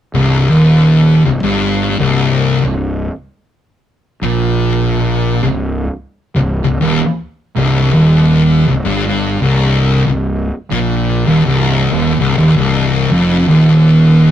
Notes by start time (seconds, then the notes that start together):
0.14 C1 C2
0.50 D#1 D#2
1.25 C1 C2
1.43 G1 G2
1.99 C1 C2
2.64 C1 C2
4.22 A#1 A#2
5.43 C1 C2
6.35 C1 C2
6.64 C1 C2
6.82 D#1 D#2
7.56 C1 C2
7.93 D#1 D#2
8.67 C1 C2
8.85 G1 G2
9.41 C1 C2
10.07 C1 C2
10.71 A#1 A#2
11.26 D#1 D#2
11.45 C1 C2
11.91 D#1 D#2
12.18 C1 C2
12.37 D#1 D#2
12.55 C1 C2
13.11 F1 F2
13.47 D#1 D#2